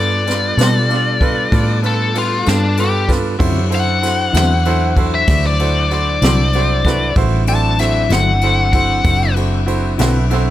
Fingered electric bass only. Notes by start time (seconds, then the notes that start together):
Already playing: G2
0.57 B2
1.52 A2
2.47 G2
3.40 F#2
4.34 E2
5.28 D2
6.22 C2
7.16 A1
8.10 G1
9.05 F#1
10.00 B1